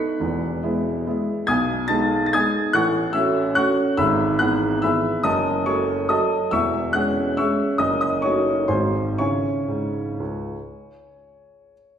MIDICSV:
0, 0, Header, 1, 2, 480
1, 0, Start_track
1, 0, Key_signature, 4, "minor"
1, 0, Tempo, 418410
1, 237, Time_signature, 3, 2, 24, 8
1, 6483, Tempo, 428266
1, 9363, Tempo, 481155
1, 10323, Tempo, 506757
1, 12979, End_track
2, 0, Start_track
2, 0, Title_t, "Upright piano"
2, 0, Program_c, 0, 0
2, 0, Note_on_c, 0, 57, 45
2, 0, Note_on_c, 0, 59, 42
2, 0, Note_on_c, 0, 63, 45
2, 0, Note_on_c, 0, 83, 54
2, 0, Note_on_c, 0, 90, 53
2, 0, Note_on_c, 0, 95, 67
2, 193, Note_off_c, 0, 57, 0
2, 196, Note_off_c, 0, 59, 0
2, 198, Note_off_c, 0, 63, 0
2, 230, Note_on_c, 0, 28, 54
2, 239, Note_on_c, 0, 40, 58
2, 436, Control_c, 0, 64, 127
2, 693, Note_off_c, 0, 28, 0
2, 698, Note_off_c, 0, 40, 0
2, 723, Note_on_c, 0, 56, 45
2, 731, Note_on_c, 0, 59, 41
2, 731, Note_on_c, 0, 64, 50
2, 1174, Note_off_c, 0, 56, 0
2, 1178, Note_off_c, 0, 59, 0
2, 1178, Note_off_c, 0, 64, 0
2, 1222, Note_on_c, 0, 59, 46
2, 1223, Note_on_c, 0, 56, 47
2, 1225, Control_c, 0, 64, 0
2, 1226, Note_on_c, 0, 64, 48
2, 1416, Note_off_c, 0, 90, 0
2, 1420, Note_off_c, 0, 83, 0
2, 1458, Note_off_c, 0, 95, 0
2, 1653, Note_off_c, 0, 56, 0
2, 1653, Note_off_c, 0, 59, 0
2, 1654, Note_off_c, 0, 64, 0
2, 1686, Note_on_c, 0, 92, 91
2, 1697, Note_on_c, 0, 35, 64
2, 1698, Note_on_c, 0, 87, 68
2, 1700, Note_on_c, 0, 47, 57
2, 1703, Note_on_c, 0, 80, 75
2, 1869, Control_c, 0, 64, 127
2, 2136, Note_off_c, 0, 87, 0
2, 2139, Note_off_c, 0, 80, 0
2, 2154, Note_off_c, 0, 35, 0
2, 2154, Note_on_c, 0, 93, 88
2, 2156, Note_off_c, 0, 47, 0
2, 2163, Note_off_c, 0, 92, 0
2, 2163, Note_on_c, 0, 56, 47
2, 2163, Note_on_c, 0, 59, 47
2, 2166, Note_on_c, 0, 81, 73
2, 2170, Note_on_c, 0, 63, 48
2, 2559, Note_off_c, 0, 81, 0
2, 2580, Note_off_c, 0, 93, 0
2, 2597, Note_on_c, 0, 93, 73
2, 2621, Note_off_c, 0, 56, 0
2, 2621, Note_off_c, 0, 59, 0
2, 2624, Note_off_c, 0, 63, 0
2, 2673, Note_off_c, 0, 93, 0
2, 2676, Note_on_c, 0, 92, 95
2, 2683, Note_on_c, 0, 80, 73
2, 2685, Control_c, 0, 64, 0
2, 2685, Note_on_c, 0, 87, 70
2, 2686, Note_on_c, 0, 59, 45
2, 2687, Note_on_c, 0, 56, 48
2, 2690, Note_on_c, 0, 63, 50
2, 3107, Note_off_c, 0, 59, 0
2, 3108, Note_off_c, 0, 56, 0
2, 3110, Note_off_c, 0, 63, 0
2, 3119, Note_off_c, 0, 80, 0
2, 3120, Note_off_c, 0, 87, 0
2, 3137, Note_on_c, 0, 90, 99
2, 3144, Note_on_c, 0, 33, 68
2, 3145, Note_on_c, 0, 45, 58
2, 3148, Note_off_c, 0, 92, 0
2, 3152, Note_on_c, 0, 78, 76
2, 3157, Note_on_c, 0, 85, 74
2, 3363, Control_c, 0, 64, 127
2, 3573, Note_off_c, 0, 78, 0
2, 3575, Note_off_c, 0, 85, 0
2, 3586, Note_off_c, 0, 33, 0
2, 3587, Note_off_c, 0, 45, 0
2, 3590, Note_on_c, 0, 88, 94
2, 3596, Note_off_c, 0, 90, 0
2, 3597, Note_on_c, 0, 57, 49
2, 3608, Note_on_c, 0, 61, 49
2, 3610, Note_on_c, 0, 76, 70
2, 3612, Note_on_c, 0, 66, 49
2, 4031, Note_off_c, 0, 57, 0
2, 4037, Note_off_c, 0, 61, 0
2, 4038, Note_off_c, 0, 66, 0
2, 4050, Note_off_c, 0, 76, 0
2, 4073, Note_off_c, 0, 88, 0
2, 4076, Note_on_c, 0, 90, 92
2, 4081, Note_on_c, 0, 57, 47
2, 4082, Note_on_c, 0, 78, 66
2, 4082, Note_on_c, 0, 85, 70
2, 4084, Note_on_c, 0, 61, 47
2, 4093, Control_c, 0, 64, 0
2, 4095, Note_on_c, 0, 66, 51
2, 4515, Note_off_c, 0, 57, 0
2, 4517, Note_off_c, 0, 61, 0
2, 4522, Note_off_c, 0, 66, 0
2, 4528, Note_off_c, 0, 78, 0
2, 4528, Note_off_c, 0, 85, 0
2, 4558, Note_off_c, 0, 90, 0
2, 4559, Note_on_c, 0, 88, 99
2, 4562, Note_on_c, 0, 32, 66
2, 4565, Note_on_c, 0, 44, 59
2, 4570, Note_on_c, 0, 83, 73
2, 4571, Note_on_c, 0, 76, 69
2, 4764, Control_c, 0, 64, 127
2, 5016, Note_off_c, 0, 76, 0
2, 5016, Note_off_c, 0, 83, 0
2, 5031, Note_off_c, 0, 32, 0
2, 5032, Note_off_c, 0, 44, 0
2, 5036, Note_on_c, 0, 90, 89
2, 5044, Note_off_c, 0, 88, 0
2, 5045, Note_on_c, 0, 52, 49
2, 5049, Note_on_c, 0, 68, 53
2, 5050, Note_on_c, 0, 78, 64
2, 5052, Note_on_c, 0, 59, 52
2, 5489, Note_off_c, 0, 52, 0
2, 5491, Note_off_c, 0, 68, 0
2, 5492, Note_off_c, 0, 59, 0
2, 5503, Note_off_c, 0, 78, 0
2, 5529, Note_on_c, 0, 88, 84
2, 5530, Note_off_c, 0, 90, 0
2, 5543, Note_on_c, 0, 52, 46
2, 5548, Note_on_c, 0, 76, 70
2, 5549, Note_on_c, 0, 83, 62
2, 5551, Control_c, 0, 64, 0
2, 5553, Note_on_c, 0, 59, 45
2, 5558, Note_on_c, 0, 68, 52
2, 5962, Note_off_c, 0, 52, 0
2, 5967, Note_off_c, 0, 59, 0
2, 5970, Note_off_c, 0, 68, 0
2, 5978, Note_off_c, 0, 76, 0
2, 5979, Note_off_c, 0, 83, 0
2, 6001, Note_off_c, 0, 88, 0
2, 6005, Note_on_c, 0, 87, 99
2, 6014, Note_on_c, 0, 75, 71
2, 6016, Note_on_c, 0, 42, 59
2, 6017, Note_on_c, 0, 30, 54
2, 6022, Note_on_c, 0, 81, 68
2, 6208, Control_c, 0, 64, 127
2, 6456, Note_off_c, 0, 75, 0
2, 6461, Note_off_c, 0, 81, 0
2, 6476, Note_off_c, 0, 42, 0
2, 6477, Note_off_c, 0, 30, 0
2, 6485, Note_off_c, 0, 87, 0
2, 6493, Note_on_c, 0, 85, 81
2, 6499, Note_on_c, 0, 73, 65
2, 6504, Note_on_c, 0, 54, 44
2, 6505, Note_on_c, 0, 57, 49
2, 6511, Note_on_c, 0, 69, 51
2, 6938, Note_off_c, 0, 54, 0
2, 6938, Note_off_c, 0, 57, 0
2, 6941, Note_off_c, 0, 69, 0
2, 6946, Note_off_c, 0, 73, 0
2, 6974, Note_on_c, 0, 87, 85
2, 6977, Note_off_c, 0, 85, 0
2, 6979, Note_on_c, 0, 54, 50
2, 6980, Note_on_c, 0, 57, 48
2, 6986, Note_on_c, 0, 69, 54
2, 6986, Note_on_c, 0, 81, 66
2, 6988, Control_c, 0, 64, 0
2, 6989, Note_on_c, 0, 75, 64
2, 7410, Note_off_c, 0, 54, 0
2, 7411, Note_off_c, 0, 57, 0
2, 7414, Note_off_c, 0, 69, 0
2, 7425, Note_off_c, 0, 81, 0
2, 7427, Note_off_c, 0, 75, 0
2, 7448, Note_on_c, 0, 88, 93
2, 7453, Note_off_c, 0, 87, 0
2, 7458, Note_on_c, 0, 28, 52
2, 7464, Note_on_c, 0, 40, 62
2, 7466, Note_on_c, 0, 85, 73
2, 7469, Note_on_c, 0, 76, 69
2, 7642, Control_c, 0, 64, 127
2, 7895, Note_off_c, 0, 85, 0
2, 7897, Note_off_c, 0, 76, 0
2, 7909, Note_off_c, 0, 28, 0
2, 7912, Note_off_c, 0, 40, 0
2, 7916, Note_on_c, 0, 90, 90
2, 7918, Note_off_c, 0, 88, 0
2, 7927, Note_on_c, 0, 56, 44
2, 7932, Note_on_c, 0, 78, 64
2, 7933, Note_on_c, 0, 61, 47
2, 7937, Note_on_c, 0, 68, 47
2, 8366, Note_off_c, 0, 56, 0
2, 8369, Note_off_c, 0, 61, 0
2, 8371, Note_off_c, 0, 68, 0
2, 8379, Note_off_c, 0, 78, 0
2, 8405, Note_off_c, 0, 90, 0
2, 8412, Note_on_c, 0, 88, 85
2, 8418, Note_on_c, 0, 56, 47
2, 8421, Note_on_c, 0, 61, 45
2, 8421, Note_on_c, 0, 68, 44
2, 8421, Note_on_c, 0, 76, 59
2, 8422, Control_c, 0, 64, 0
2, 8422, Note_on_c, 0, 85, 58
2, 8838, Note_off_c, 0, 56, 0
2, 8839, Note_off_c, 0, 61, 0
2, 8840, Note_off_c, 0, 68, 0
2, 8852, Note_off_c, 0, 76, 0
2, 8853, Note_off_c, 0, 85, 0
2, 8872, Note_on_c, 0, 87, 87
2, 8880, Note_off_c, 0, 88, 0
2, 8880, Note_on_c, 0, 30, 51
2, 8883, Note_on_c, 0, 42, 58
2, 8885, Note_on_c, 0, 75, 67
2, 9073, Control_c, 0, 64, 127
2, 9104, Note_off_c, 0, 75, 0
2, 9109, Note_off_c, 0, 87, 0
2, 9126, Note_on_c, 0, 87, 80
2, 9139, Note_on_c, 0, 75, 59
2, 9351, Note_off_c, 0, 30, 0
2, 9353, Note_off_c, 0, 42, 0
2, 9360, Note_off_c, 0, 75, 0
2, 9363, Note_on_c, 0, 85, 75
2, 9369, Note_off_c, 0, 87, 0
2, 9377, Note_on_c, 0, 73, 57
2, 9380, Note_on_c, 0, 57, 41
2, 9382, Note_on_c, 0, 63, 39
2, 9388, Note_on_c, 0, 66, 46
2, 9797, Note_off_c, 0, 57, 0
2, 9798, Note_off_c, 0, 63, 0
2, 9801, Note_off_c, 0, 66, 0
2, 9804, Note_off_c, 0, 73, 0
2, 9821, Note_on_c, 0, 84, 68
2, 9824, Note_on_c, 0, 32, 47
2, 9824, Note_on_c, 0, 80, 52
2, 9825, Note_on_c, 0, 44, 49
2, 9825, Note_on_c, 0, 56, 37
2, 9826, Note_on_c, 0, 72, 53
2, 9829, Note_off_c, 0, 85, 0
2, 9834, Note_on_c, 0, 63, 38
2, 9836, Note_on_c, 0, 66, 37
2, 9842, Control_c, 0, 64, 0
2, 10048, Control_c, 0, 64, 127
2, 10282, Note_off_c, 0, 56, 0
2, 10287, Note_off_c, 0, 63, 0
2, 10287, Note_off_c, 0, 80, 0
2, 10288, Note_off_c, 0, 66, 0
2, 10288, Note_off_c, 0, 72, 0
2, 10306, Note_off_c, 0, 32, 0
2, 10307, Note_off_c, 0, 44, 0
2, 10320, Note_off_c, 0, 84, 0
2, 10324, Note_on_c, 0, 85, 71
2, 10327, Note_on_c, 0, 64, 37
2, 10330, Note_on_c, 0, 49, 45
2, 10331, Note_on_c, 0, 73, 52
2, 10331, Note_on_c, 0, 80, 52
2, 10334, Note_on_c, 0, 61, 38
2, 10338, Control_c, 0, 64, 0
2, 10561, Control_c, 0, 64, 127
2, 10660, Note_off_c, 0, 49, 0
2, 10706, Note_off_c, 0, 64, 0
2, 10710, Note_off_c, 0, 61, 0
2, 10795, Note_on_c, 0, 44, 42
2, 11136, Note_off_c, 0, 44, 0
2, 11284, Note_on_c, 0, 37, 43
2, 11299, Control_c, 0, 64, 0
2, 11615, Note_off_c, 0, 37, 0
2, 11942, Control_c, 0, 64, 127
2, 12738, Control_c, 0, 64, 0
2, 12930, Note_off_c, 0, 73, 0
2, 12930, Note_off_c, 0, 80, 0
2, 12965, Note_off_c, 0, 85, 0
2, 12979, End_track
0, 0, End_of_file